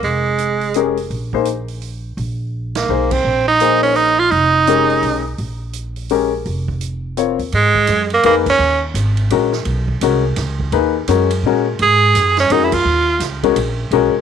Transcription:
0.03 upright bass F1, tenor saxophone G#3, open hi-hat
0.38 closed hi-hat
0.61 open hi-hat
0.74 grand piano G#3 C#4 G4 A#4, closed hi-hat
0.97 open hi-hat
1.10 upright bass A#1, open hi-hat
1.33 grand piano A#3 D#4 G#4 C5, kick
1.45 closed hi-hat
1.68 open hi-hat
1.82 open hi-hat
2.17 upright bass A#1, open hi-hat
2.75 tenor saxophone A#3, snare, ride
2.89 upright bass B1, grand piano A#3 D#4 G#4 C5
3.11 tenor saxophone C4, kick, crash
3.25 upright bass A#1
3.48 tenor saxophone D#4
3.60 grand piano A#3 D#4 G#4 C5, closed hi-hat
3.83 tenor saxophone C#4, open hi-hat
3.96 tenor saxophone D#4, open hi-hat
4.19 tenor saxophone F4
4.31 upright bass F1, tenor saxophone D#4, open hi-hat
4.67 grand piano G#3 C#4 G4 A#4, closed hi-hat
4.90 open hi-hat
5.02 upright bass B1, open hi-hat
5.38 upright bass A#1, open hi-hat
5.73 closed hi-hat
5.96 open hi-hat
6.09 grand piano G#3 C#4 G4 A#4, open hi-hat
6.45 upright bass F1, open hi-hat
6.68 kick
6.81 closed hi-hat
7.17 grand piano C4 F4 A#4 C#5, closed hi-hat
7.39 upright bass D#2, open hi-hat
7.52 upright bass G#2, tenor saxophone G#3, ride
7.75 kick
7.87 upright bass F#2, hi-hat pedal, ride
8.10 tenor saxophone A#3, ride
8.23 upright bass F2, grand piano A#3 D#4 G#4 B4, tenor saxophone A#3, ride
8.46 tenor saxophone C#4, kick, crash
8.59 upright bass D#2
8.94 upright bass G#1, hi-hat pedal, ride
9.17 ride
9.30 upright bass A#1, grand piano G#3 C#4 F#4 A#4, ride
9.53 snare
9.65 upright bass B1, ride
9.88 kick
10.01 upright bass C2, grand piano G#3 C#4 F#4 A#4, hi-hat pedal, ride
10.36 upright bass C#2, snare, ride
10.60 kick
10.72 upright bass D#2, grand piano A#3 D#4 G#4 B4, ride
11.07 upright bass F#2, grand piano G#3 C#4 F#4 A#4, hi-hat pedal, ride
11.30 ride
11.43 upright bass A#2, grand piano G#3 C#4 F#4 A#4
11.79 upright bass G#2, tenor saxophone G#4, ride
12.15 upright bass F#2, hi-hat pedal, ride
12.37 tenor saxophone C#4, snare, ride
12.50 upright bass F2, grand piano G#3 C#4 F#4 A#4, tenor saxophone D#4, ride
12.65 tenor saxophone E4
12.72 tenor saxophone F4, kick, crash
12.85 upright bass D#2
13.20 upright bass C#2, snare, hi-hat pedal, ride
13.43 grand piano G#3 C#4 F#4 A#4, kick, ride
13.56 upright bass A#1, ride
13.91 upright bass B1, grand piano G#3 C#4 F#4 A#4, ride
14.14 muted upright bass stroke

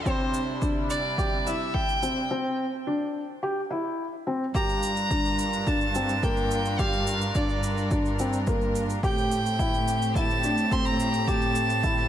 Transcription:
0.06 string section C3 G3 D4 E4, felt piano C4, violin C5, kick, shaker
0.34 shaker
0.62 felt piano D4, kick, shaker
0.90 violin D5, shaker
1.18 felt piano G4, kick, shaker
1.46 felt piano E4, violin E5, shaker
1.74 violin G5, kick
1.89 shaker
2.03 felt piano C4, shaker
2.31 felt piano C4
2.87 felt piano D4
3.43 felt piano G4
3.71 felt piano E4
4.27 felt piano C4
4.54 cello section G2, string section G3 D4 F4 A#4, felt piano G4, violin A#5, kick, shaker
4.69 shaker
4.83 shaker
4.97 shaker
5.11 felt piano D4, kick, shaker
5.25 shaker
5.39 shaker
5.53 shaker
5.67 felt piano D4, violin A5, kick, shaker
5.81 shaker
5.95 felt piano C4, shaker
6.09 shaker
6.23 felt piano A#3, violin G5, kick, shaker
6.37 shaker
6.51 shaker
6.65 shaker
6.79 felt piano G4, violin F5, kick, shaker
6.93 shaker
7.07 shaker
7.21 shaker
7.35 felt piano D4, violin D5, kick, shaker
7.49 shaker
7.63 shaker
7.77 shaker
7.91 felt piano D4, kick, shaker
8.05 shaker
8.19 felt piano C4, shaker
8.33 shaker
8.47 felt piano A#3, kick, shaker
8.61 shaker
8.75 shaker
8.90 shaker
9.03 cello section A2, string section A3 C4 G4, felt piano G4, violin G5, kick, shaker
9.18 shaker
9.31 shaker
9.46 shaker
9.59 felt piano E4, kick, shaker
9.74 shaker
9.88 shaker
10.02 shaker
10.15 felt piano E4, violin A5, kick, shaker
10.30 shaker
10.44 felt piano D4, shaker
10.58 shaker
10.71 felt piano C4, violin C6, kick, shaker
10.86 violin A#5, shaker
11.00 shaker
11.14 shaker
11.28 felt piano G4, violin A5, kick, shaker
11.42 shaker
11.55 shaker
11.70 shaker
11.83 felt piano E4, kick, shaker
11.98 shaker

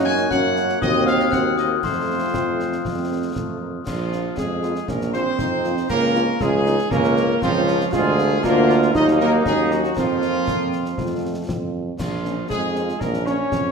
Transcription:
Already playing: tuba F#2, french horn section A#3 C#4 F#4, trombone section A#3 C#4, euphonium D#4
0.05 trumpet section G#5, glockenspiel G#6
0.30 tuba F#2, french horn section A#3 C#4 F#4, euphonium C#4, trumpet section F#5, glockenspiel F#6, concert bass drum, snare
0.56 snare
0.69 snare
0.81 tuba D#2, french horn section A#3 C4 F#4, trombone section C4, euphonium C4, trumpet section D#5, glockenspiel D#6, concert bass drum, snare
1.06 trumpet section F5, glockenspiel F6, snare
1.20 snare
1.32 tuba D#2, french horn section A#3 C4 F#4, trumpet section F#5, glockenspiel F#6, concert bass drum, snare
1.58 trumpet section D#5, glockenspiel D#6, snare
1.83 tuba F2, trombone section A3 C4, euphonium A3, french horn section A3 C4 F4, trumpet section C5, glockenspiel C6, concert bass drum, snare, crash
2.33 tuba F2, trombone section C4, concert bass drum, snare
2.59 trombone section C#4, snare
2.72 snare
2.83 tuba F2, trombone section C4, concert bass drum, snare
3.35 tuba F2, trombone section A3, concert bass drum, snare
3.60 trombone section A#3
3.86 tuba A#1, euphonium F3, trumpet section F4, concert bass drum, snare, crash
4.13 french horn section F3 A#3 F4, snare
4.36 tuba F2, euphonium G#3, trombone section C#4, trumpet section G#4, concert bass drum, snare
4.61 french horn section F3 A#3 F4, trombone section C4, snare
4.76 snare
4.88 tuba A#1, euphonium A#3, trombone section C#4, trumpet section A#4, concert bass drum, snare
5.01 snare
5.13 french horn section F3 A#3 F4, euphonium C4, trumpet section C5, snare
5.39 tuba F2, trombone section D#4, concert bass drum, snare
5.64 french horn section F3 A#3 F4, snare
5.77 snare
5.90 tuba C#2, euphonium A#3, trombone section C#4, trumpet section A#4, concert bass drum, snare, crash
6.15 french horn section F3 A#3 F4, snare
6.40 tuba C#2, euphonium G#3, trombone section F4, trumpet section G#4, concert bass drum, snare
6.66 french horn section F3 A#3 F4, trombone section D#4, snare
6.79 snare
6.91 tuba C#2, euphonium A#3, trombone section C#4, trumpet section A#4, concert bass drum, snare
7.04 snare
7.17 french horn section F3 A#3 F4, trombone section A#3, snare
7.42 tuba C#2, euphonium F3, trombone section C4, trumpet section F4, concert bass drum, snare
7.67 french horn section F3 A#3 F4, trombone section C#4, snare
7.80 snare
7.92 tuba D2, french horn section F3 A#3 F4, euphonium G#3, trombone section F4, trumpet section G#4, concert bass drum, snare, crash
8.19 snare
8.42 tuba D2, french horn section F3 A#3 F4, euphonium A#3, trombone section D4, trumpet section A#4, concert bass drum, snare
8.68 trombone section F4, snare
8.82 snare
8.94 tuba D#2, french horn section F#3 A#3 D#4, trombone section D#4, euphonium D#4, trumpet section D#5, concert bass drum, snare
9.08 snare
9.20 euphonium A#3, trumpet section A#4, snare
9.46 tuba D#2, euphonium G#3, french horn section C#4, trumpet section G#4, concert bass drum, snare
9.71 euphonium F#3, trumpet section F#4, snare
9.84 snare
9.96 tuba F2, euphonium F3, french horn section F3 A#3 C4, trombone section C4, trumpet section F4, concert bass drum, snare, crash
10.22 snare
10.47 tuba F2, concert bass drum, snare
10.73 snare
10.85 snare
10.98 tuba F2, french horn section F3 A3 C4, concert bass drum, snare
11.49 tuba F2, concert bass drum, snare
11.99 tuba A#1, euphonium F3, trumpet section F4, concert bass drum, snare, crash
12.24 french horn section F3 A#3 C#4, snare
12.49 tuba F2, euphonium G#3, trombone section D#4, trumpet section G#4, concert bass drum, snare
12.75 french horn section F3 A#3 C#4, trombone section F4, snare
12.89 snare
13.00 tuba A#1, euphonium A#3, trombone section C#4, trumpet section A#4, concert bass drum, snare
13.14 snare
13.26 french horn section F3 A#3 C#4, euphonium C#4, trumpet section C#5, snare
13.52 tuba F2, concert bass drum, snare

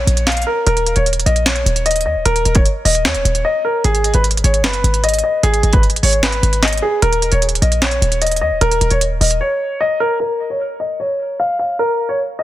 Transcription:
Already playing: grand piano C#5
0.07 808-style bass A#1, closed hi-hat
0.17 closed hi-hat
0.27 grand piano F5, snare, clap, closed hi-hat
0.32 closed hi-hat
0.37 closed hi-hat
0.42 closed hi-hat
0.47 grand piano A#4
0.67 808-style bass D#1, grand piano A#4, closed hi-hat
0.77 closed hi-hat
0.86 closed hi-hat
0.96 808-style bass D#1, grand piano C#5, closed hi-hat
1.06 closed hi-hat
1.13 closed hi-hat
1.20 closed hi-hat
1.26 808-style bass A#1, grand piano D#5, closed hi-hat
1.36 closed hi-hat
1.46 grand piano C#5, snare, clap, closed hi-hat
1.56 closed hi-hat
1.66 808-style bass D#1, closed hi-hat
1.76 closed hi-hat
1.86 grand piano D#5, closed hi-hat
1.91 closed hi-hat
1.96 closed hi-hat
2.01 closed hi-hat
2.06 808-style bass D#2, grand piano D#5
2.16 808-style bass D#1
2.25 808-style bass D#1, grand piano A#4, closed hi-hat
2.36 closed hi-hat
2.45 808-style bass D#1, closed hi-hat
2.55 grand piano C#5, kick, closed hi-hat
2.66 closed hi-hat
2.85 808-style bass D#1, grand piano D#5, open hi-hat
2.95 closed hi-hat
3.05 808-style bass D#2, grand piano C#5, snare, clap, closed hi-hat
3.14 808-style bass D#1, closed hi-hat
3.25 808-style bass D#1, closed hi-hat
3.35 closed hi-hat
3.45 grand piano D#5
3.65 grand piano A#4
3.84 808-style bass G#1, grand piano G#4, closed hi-hat
3.95 closed hi-hat
4.04 closed hi-hat
4.14 808-style bass G#1, grand piano B4, closed hi-hat
4.24 closed hi-hat
4.31 closed hi-hat
4.37 closed hi-hat
4.44 808-style bass G#1, grand piano C#5, closed hi-hat
4.54 closed hi-hat
4.64 808-style bass F#1, grand piano B4, snare, clap, closed hi-hat
4.73 closed hi-hat
4.84 808-style bass G#1, closed hi-hat
4.94 closed hi-hat
5.04 grand piano D#5, closed hi-hat
5.09 closed hi-hat
5.14 closed hi-hat
5.19 closed hi-hat
5.24 grand piano D#5
5.43 808-style bass G#1, grand piano G#4, closed hi-hat
5.54 closed hi-hat
5.63 808-style bass G#1, closed hi-hat
5.73 grand piano B4, kick, closed hi-hat
5.83 closed hi-hat
5.90 closed hi-hat
5.96 closed hi-hat
6.03 808-style bass G#1, grand piano C#5, open hi-hat
6.13 closed hi-hat
6.23 grand piano B4, snare, clap, closed hi-hat
6.32 closed hi-hat
6.43 808-style bass G#1, closed hi-hat
6.53 closed hi-hat
6.62 grand piano D#5, snare, clap, closed hi-hat
6.68 closed hi-hat
6.73 closed hi-hat
6.78 closed hi-hat
6.82 grand piano G#4
7.02 808-style bass D#1, grand piano A#4, closed hi-hat
7.13 closed hi-hat
7.22 closed hi-hat
7.32 808-style bass D#1, grand piano C#5, closed hi-hat
7.42 closed hi-hat
7.49 closed hi-hat
7.55 closed hi-hat
7.62 808-style bass A#1, grand piano D#5, closed hi-hat
7.72 closed hi-hat
7.82 grand piano C#5, snare, clap, closed hi-hat
7.91 closed hi-hat
8.02 808-style bass D#1, closed hi-hat
8.12 closed hi-hat
8.22 grand piano D#5, closed hi-hat
8.27 closed hi-hat
8.31 closed hi-hat
8.36 closed hi-hat
8.41 808-style bass D#2, grand piano D#5
8.51 808-style bass D#1
8.61 808-style bass D#1, grand piano A#4, closed hi-hat
8.71 closed hi-hat
8.81 808-style bass D#1, closed hi-hat
8.90 808-style bass D#1, grand piano C#5, closed hi-hat
9.01 closed hi-hat
9.21 808-style bass D#1, grand piano D#5, open hi-hat
9.31 closed hi-hat
9.41 grand piano C#5
9.81 grand piano D#5
10.00 grand piano A#4
10.20 grand piano A#4
10.50 grand piano C#5
10.80 grand piano D#5
11.00 grand piano C#5
11.40 grand piano F5
11.59 grand piano F5
11.79 grand piano A#4
12.09 grand piano C#5
12.39 grand piano D#5

